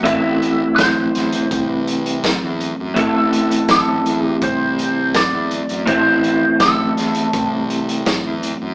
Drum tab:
HH |x-x-x-xxx-xxx-x-|x-xxx-x-x-x-x-xx|x-x-x-xxx-xxx-x-|
SD |----o-o-----o---|----o-------o---|----o-o-----o---|
BD |o---o---o---o---|o---o---o---o---|o---o---o---o---|